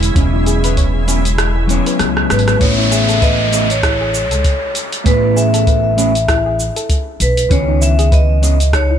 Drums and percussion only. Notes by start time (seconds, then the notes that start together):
0.03 open hi-hat, cabasa
0.16 kick, open hi-hat, cabasa
0.46 open hi-hat, cabasa
0.64 open hi-hat, cabasa
0.77 kick, open hi-hat, cabasa
1.08 open hi-hat, cabasa
1.25 open hi-hat, cabasa
1.38 cross-stick, open hi-hat, cabasa
1.69 open hi-hat, cabasa
1.86 open hi-hat, cabasa
1.99 cross-stick, open hi-hat, cabasa
2.17 cross-stick
2.30 cross-stick, open hi-hat, cabasa
2.39 open hi-hat
2.48 cross-stick, open hi-hat, cabasa
2.61 kick, open hi-hat, cabasa
2.92 cabasa
3.09 open hi-hat, cabasa
3.22 kick, open hi-hat, cabasa
3.53 open hi-hat, cabasa
3.70 open hi-hat, cabasa
3.83 kick, cross-stick, open hi-hat, cabasa
4.15 cabasa
4.31 open hi-hat, cabasa
4.44 kick, open hi-hat, cabasa
4.75 open hi-hat, cabasa
4.93 open hi-hat, cabasa
5.06 kick, open hi-hat, cabasa
5.37 cabasa
5.54 open hi-hat, cabasa
5.67 kick, open hi-hat, cabasa
5.98 open hi-hat, cabasa
6.15 open hi-hat, cabasa
6.28 kick, cross-stick, open hi-hat, cabasa
6.60 cabasa
6.76 open hi-hat, cabasa
6.89 kick, open hi-hat, cabasa
7.20 open hi-hat, cabasa
7.37 open hi-hat, cabasa
7.51 kick, open hi-hat, cabasa
7.82 cabasa
7.99 open hi-hat, cabasa
8.12 kick, open hi-hat, cabasa
8.43 open hi-hat, cabasa
8.60 open hi-hat, cabasa
8.73 kick, cross-stick, open hi-hat, cabasa